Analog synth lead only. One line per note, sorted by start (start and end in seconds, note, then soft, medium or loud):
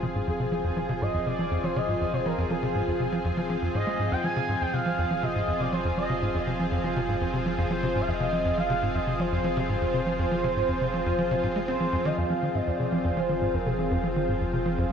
0.27 1.03 G#4 medium
1.01 1.26 D#5 loud
1.27 1.65 D5 loud
1.64 1.78 C5 loud
1.76 2.15 D#5 loud
2.14 2.27 C5 medium
2.26 2.52 A#4 medium
2.51 3.25 G#4 medium
3.75 4.13 D#5 loud
4.12 4.23 G5 loud
4.24 4.62 G#5 loud
4.61 4.75 G5 medium
4.73 5.24 F5 loud
5.23 5.61 D#5 medium
5.60 5.74 D5 medium
5.73 5.97 C5 medium
5.97 6.44 D#5 medium
7.71 8.02 C5 loud
8.01 8.09 F5 medium
8.08 8.59 D#5 loud
8.58 8.96 F5 loud
8.95 9.21 D#5 loud
9.20 11.67 C5 loud
11.68 12.07 C5 loud
12.05 12.19 D#5 medium
12.17 12.57 F5 loud
12.55 12.69 D#5 medium
12.67 13.17 D5 medium
13.17 13.56 C5 medium
13.54 13.68 A#4 medium
13.66 13.93 G#4 medium
13.91 14.41 C5 medium